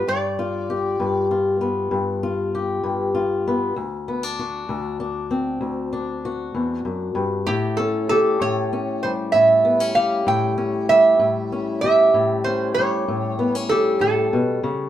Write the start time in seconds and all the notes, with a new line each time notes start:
0.07 G2 D5
0.39 F4
0.70 G4
1.00 G2
1.31 F4
1.61 B3
1.91 G2
2.23 F4
2.55 G4
2.84 G2
3.15 F4
3.48 B3
3.76 D2
4.08 B3
4.23 D4
4.39 F#4
4.69 D2
5.00 D4
5.31 C4
5.61 D2
5.93 D4
6.25 F#4
6.55 E2
6.85 F#2
7.15 G2
7.47 A2 G4
7.77 C#4 A4
8.09 G4 A4
8.41 A2 C#5
8.73 C#4
9.03 G3 C5
9.32 A2 E5
9.65 B3
9.80 C#4
9.95 G4 F5
10.27 A2 G5
10.58 C#4
10.89 G3 E5
11.19 A2
11.52 C#4
11.81 G4 E5
12.14 A2
12.44 C#4 C5
12.74 G3 C#5
13.08 A2
13.39 B3
13.55 C#4
13.69 G4 A4
14.01 A2 A4
14.33 B2
14.63 C#3